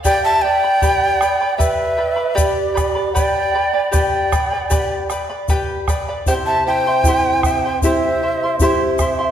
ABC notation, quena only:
X:1
M:4/4
L:1/16
Q:1/4=77
K:Gmix
V:1 name="Quena"
g a g6 e4 d4 | g4 g6 z6 | g a g6 e4 e4 |]